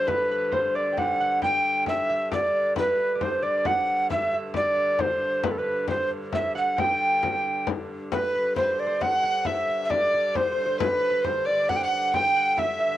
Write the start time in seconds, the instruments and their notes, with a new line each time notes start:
Already playing: hurdy-gurdy G2 D3, harp C5 D5 E5
0.07 harp B4, recorder B4, frame drum
0.30 harp B4, frame drum
0.52 harp C5, recorder C5, frame drum
0.75 harp D5, recorder D5, frame drum
0.92 harp G5
0.97 harp F#5, recorder F#5, frame drum
1.19 harp F#5, frame drum
1.42 harp G5, recorder G5, frame drum
1.86 harp E5, recorder E5, frame drum
2.09 harp E5, frame drum
2.31 harp D5, recorder D5, frame drum
2.53 frame drum
2.76 hurdy-gurdy G2 D3, harp B4, recorder B4, frame drum
2.99 frame drum
3.15 harp D5
3.21 harp C5, recorder C5, frame drum
3.42 harp D5, recorder D5, frame drum
3.65 harp F#5, recorder F#5, frame drum
3.88 frame drum
4.10 recorder E5, harp E5, frame drum
4.33 harp E5, frame drum
4.54 harp D5, recorder D5, frame drum
4.77 frame drum
4.99 harp C5, recorder C5, frame drum
5.22 frame drum
5.43 recorder B4, harp B4, frame drum
5.51 recorder A4
5.58 recorder B4, harp B4
5.66 frame drum
5.88 harp C5, recorder C5, frame drum
6.11 frame drum
6.32 harp E5, recorder E5, frame drum
6.55 harp F#5, recorder F#5, frame drum
6.76 harp G5, recorder G5, frame drum
7.01 frame drum
7.23 frame drum
7.45 frame drum
7.67 frame drum
8.12 hurdy-gurdy G2 D3, recorder B4, fiddle B4, harp B4, frame drum
8.35 harp B4, frame drum
8.56 recorder C5, fiddle C5, harp C5, frame drum
8.63 fiddle B4
8.71 fiddle C5, harp C5
8.79 recorder D5, frame drum
8.86 harp C5
9.01 harp F#5, fiddle F#5, recorder F#5, frame drum
9.23 harp F#5, frame drum
9.45 recorder E5, harp E5, fiddle E5, frame drum
9.69 fiddle E5, frame drum
9.85 recorder E5
9.90 recorder D5, fiddle D5, harp D5, frame drum
10.13 harp D5, frame drum
10.35 fiddle C5, recorder C5, harp C5, frame drum
10.52 harp C5
10.58 frame drum
10.66 harp C5
10.79 fiddle B4, recorder B4, harp B4, frame drum
10.97 harp B4
11.03 frame drum
11.10 harp B4
11.22 fiddle C5, harp C5, recorder C5, frame drum
11.45 fiddle D5, recorder D5, harp D5, frame drum
11.69 fiddle F#5, harp F#5, recorder F#5, frame drum
11.76 recorder G5
11.83 fiddle F#5, recorder F#5, harp F#5
11.92 frame drum
12.14 fiddle G5, recorder G5, harp G5, frame drum
12.36 harp F#5
12.57 harp E5, fiddle E5, recorder E5, frame drum
12.80 harp E5